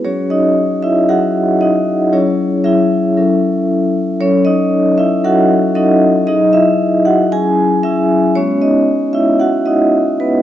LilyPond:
\new Staff \with { instrumentName = "Vibraphone" } { \time 4/4 \key fis \dorian \tempo 4 = 115 << { <cis' cis''>8 <dis' dis''>4 <e' e''>8 <fis' fis''>4 <dis' dis''>4 | <cis' cis''>4 <e' e''>2. | <cis' cis''>8 <dis' dis''>4 <e' e''>8 <fis' fis''>4 <dis' dis''>4 | <dis' dis''>8 <e' e''>4 <fis' fis''>8 <gis' gis''>4 <e' e''>4 |
<cis' cis''>8 <dis' dis''>4 <e' e''>8 <fis' fis''>8 <dis' dis''>4 <b b'>8 | } \\ { <fis fis' gis'>2 <fis gis'>2 | <fis e' gis'>4 <fis gis'>4 <fis cis' a'>2 | <fis a'>2 <fis cis' a'>4 <fis cis' a'>4 | <fis gis'>2 <fis cis' e'>4 <fis cis'>4 |
<gis b fis'>1 | } >> }